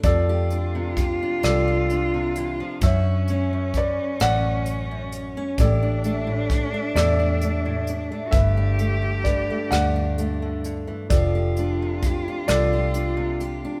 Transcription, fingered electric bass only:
0, 0, Header, 1, 2, 480
1, 0, Start_track
1, 0, Tempo, 921659
1, 22, Time_signature, 6, 3, 24, 8
1, 7187, End_track
2, 0, Start_track
2, 0, Title_t, "Fingered electric bass"
2, 0, Program_c, 0, 33
2, 19, Note_on_c, 0, 41, 80
2, 633, Note_off_c, 0, 41, 0
2, 748, Note_on_c, 0, 36, 85
2, 1357, Note_off_c, 0, 36, 0
2, 1466, Note_on_c, 0, 42, 86
2, 2073, Note_off_c, 0, 42, 0
2, 2191, Note_on_c, 0, 33, 94
2, 2795, Note_off_c, 0, 33, 0
2, 2905, Note_on_c, 0, 33, 94
2, 3507, Note_off_c, 0, 33, 0
2, 3621, Note_on_c, 0, 40, 89
2, 4223, Note_off_c, 0, 40, 0
2, 4338, Note_on_c, 0, 31, 89
2, 4945, Note_off_c, 0, 31, 0
2, 5059, Note_on_c, 0, 38, 88
2, 5670, Note_off_c, 0, 38, 0
2, 5783, Note_on_c, 0, 29, 80
2, 6390, Note_off_c, 0, 29, 0
2, 6503, Note_on_c, 0, 36, 87
2, 7106, Note_off_c, 0, 36, 0
2, 7187, End_track
0, 0, End_of_file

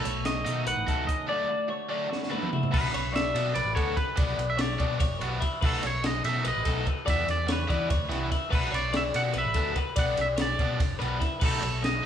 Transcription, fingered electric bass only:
0, 0, Header, 1, 2, 480
1, 0, Start_track
1, 0, Tempo, 413223
1, 1500, Time_signature, 7, 3, 24, 8
1, 14005, End_track
2, 0, Start_track
2, 0, Title_t, "Fingered electric bass"
2, 0, Program_c, 0, 33
2, 58, Note_on_c, 0, 35, 89
2, 486, Note_off_c, 0, 35, 0
2, 532, Note_on_c, 0, 47, 92
2, 749, Note_off_c, 0, 47, 0
2, 769, Note_on_c, 0, 35, 86
2, 880, Note_off_c, 0, 35, 0
2, 898, Note_on_c, 0, 33, 86
2, 1005, Note_off_c, 0, 33, 0
2, 1019, Note_on_c, 0, 37, 88
2, 1233, Note_off_c, 0, 37, 0
2, 3177, Note_on_c, 0, 35, 95
2, 3391, Note_off_c, 0, 35, 0
2, 3415, Note_on_c, 0, 35, 86
2, 3844, Note_off_c, 0, 35, 0
2, 3886, Note_on_c, 0, 47, 102
2, 4105, Note_off_c, 0, 47, 0
2, 4127, Note_on_c, 0, 35, 91
2, 4230, Note_off_c, 0, 35, 0
2, 4237, Note_on_c, 0, 33, 94
2, 4354, Note_off_c, 0, 33, 0
2, 4377, Note_on_c, 0, 38, 88
2, 4592, Note_off_c, 0, 38, 0
2, 4849, Note_on_c, 0, 35, 101
2, 5067, Note_off_c, 0, 35, 0
2, 5085, Note_on_c, 0, 35, 91
2, 5518, Note_off_c, 0, 35, 0
2, 5571, Note_on_c, 0, 47, 95
2, 5788, Note_off_c, 0, 47, 0
2, 5811, Note_on_c, 0, 35, 92
2, 5921, Note_off_c, 0, 35, 0
2, 5930, Note_on_c, 0, 30, 93
2, 6036, Note_off_c, 0, 30, 0
2, 6043, Note_on_c, 0, 35, 90
2, 6263, Note_off_c, 0, 35, 0
2, 6534, Note_on_c, 0, 35, 97
2, 6749, Note_off_c, 0, 35, 0
2, 6772, Note_on_c, 0, 35, 91
2, 7202, Note_off_c, 0, 35, 0
2, 7252, Note_on_c, 0, 47, 97
2, 7468, Note_off_c, 0, 47, 0
2, 7496, Note_on_c, 0, 35, 94
2, 7603, Note_off_c, 0, 35, 0
2, 7621, Note_on_c, 0, 33, 92
2, 7727, Note_off_c, 0, 33, 0
2, 7735, Note_on_c, 0, 35, 89
2, 7950, Note_off_c, 0, 35, 0
2, 8216, Note_on_c, 0, 40, 92
2, 8430, Note_off_c, 0, 40, 0
2, 8451, Note_on_c, 0, 40, 93
2, 8881, Note_off_c, 0, 40, 0
2, 8945, Note_on_c, 0, 52, 93
2, 9155, Note_off_c, 0, 52, 0
2, 9180, Note_on_c, 0, 40, 86
2, 9270, Note_off_c, 0, 40, 0
2, 9277, Note_on_c, 0, 38, 92
2, 9393, Note_off_c, 0, 38, 0
2, 9402, Note_on_c, 0, 36, 86
2, 9623, Note_off_c, 0, 36, 0
2, 9906, Note_on_c, 0, 35, 95
2, 10116, Note_off_c, 0, 35, 0
2, 10127, Note_on_c, 0, 35, 85
2, 10559, Note_off_c, 0, 35, 0
2, 10620, Note_on_c, 0, 47, 91
2, 10833, Note_off_c, 0, 47, 0
2, 10857, Note_on_c, 0, 35, 87
2, 10965, Note_off_c, 0, 35, 0
2, 10977, Note_on_c, 0, 33, 99
2, 11084, Note_off_c, 0, 33, 0
2, 11097, Note_on_c, 0, 38, 87
2, 11311, Note_off_c, 0, 38, 0
2, 11579, Note_on_c, 0, 35, 97
2, 11793, Note_off_c, 0, 35, 0
2, 11826, Note_on_c, 0, 35, 92
2, 12250, Note_off_c, 0, 35, 0
2, 12308, Note_on_c, 0, 47, 101
2, 12518, Note_off_c, 0, 47, 0
2, 12547, Note_on_c, 0, 35, 89
2, 12650, Note_off_c, 0, 35, 0
2, 12671, Note_on_c, 0, 30, 98
2, 12772, Note_off_c, 0, 30, 0
2, 12787, Note_on_c, 0, 35, 94
2, 12997, Note_off_c, 0, 35, 0
2, 13265, Note_on_c, 0, 35, 99
2, 13476, Note_off_c, 0, 35, 0
2, 13501, Note_on_c, 0, 35, 96
2, 13928, Note_off_c, 0, 35, 0
2, 14005, End_track
0, 0, End_of_file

